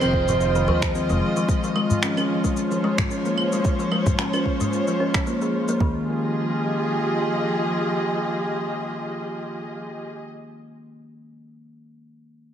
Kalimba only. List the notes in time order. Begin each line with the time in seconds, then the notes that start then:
0.01 C4
0.29 F3
0.56 D#3
0.68 F3
0.95 C4
1.10 G#3
1.37 F3
1.64 F3
1.76 G#3
2.03 C#4
2.17 C#4
2.44 G#3
2.71 F3
2.84 G#3
3.11 C#4
3.25 A#3
3.53 G#3
3.79 F3
3.92 G#3
4.19 C#4
4.34 C#4
4.61 G#3
4.88 F3
5.00 C#4
5.15 C#4
5.27 A#3
5.42 G#4
5.69 A#3
5.81 D#3